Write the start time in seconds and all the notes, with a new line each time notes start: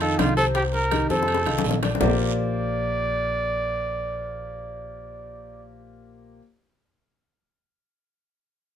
Already playing: F2
0.01 D#3 D#4 F4 A4, high bongo, high conga, high timbale
0.19 C2 F4, high bongo, low bongo, high conga, high timbale, low timbale, short guiro
0.37 C3 C4 A4 C5, high bongo, short guiro
0.55 C3 C4 G4 C5, high bongo, high conga, high timbale, long guiro
0.74 A#4, high bongo, high conga
0.91 D#3 D#4 G4, high bongo, high conga, high timbale, short guiro
1.10 F2 C3 C4 A4 C5, high bongo, high conga, short guiro
1.23 high bongo
1.28 high conga, high timbale, long guiro
1.34 high bongo
1.46 C2 D#3 D#4 F4, high bongo, high conga, high timbale
1.58 low bongo
1.64 A#1, high conga, low timbale, short guiro
1.71 low bongo
1.82 D3 D4 D5, low bongo, high conga, high timbale, short guiro
1.95 low bongo
2.00 A#1 A#3 F4 G4 A#4 C5 D5, low bongo, low conga, low timbale, long guiro